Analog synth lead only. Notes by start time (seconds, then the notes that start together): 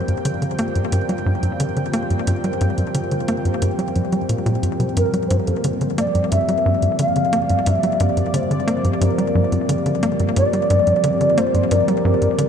4.97 A#4
5.28 C5
5.37 A#4
5.46 A4
5.55 A#4
5.98 D5
6.31 E5
6.99 F5
7.67 E5
8.00 D5
8.35 C5
9.02 A#4
10.36 D5
11.38 C5
11.71 A#4